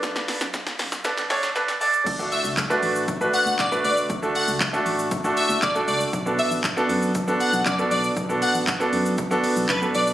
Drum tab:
CC |----------------|x---------------|----------------|----------------|
HH |-xox-xox-xox-xox|x-o-x-o-x-o-x-o-|x-o-x-o-x-o-x-o-|x-o---o-x-o-x-o-|
SH |xxxxxxxxxxxxxxxx|xxxxxxxxxxxxxxxx|xxxxxxxxxxxxxxxx|xxxxxxxxxxxxxxxx|
CP |----------------|----x-------x---|----x-------x---|----x-------x---|
SD |oooooooooooooo--|----------------|----------------|----------------|
BD |o---o---o-------|o---o---o---o---|o---o---o---o---|o---o---o---o---|

CC |----------------|
HH |x-o-x-o-x-o-x-o-|
SH |xxxxxxxxxxxxxxxx|
CP |----x-------x---|
SD |----------------|
BD |o---o---o---o---|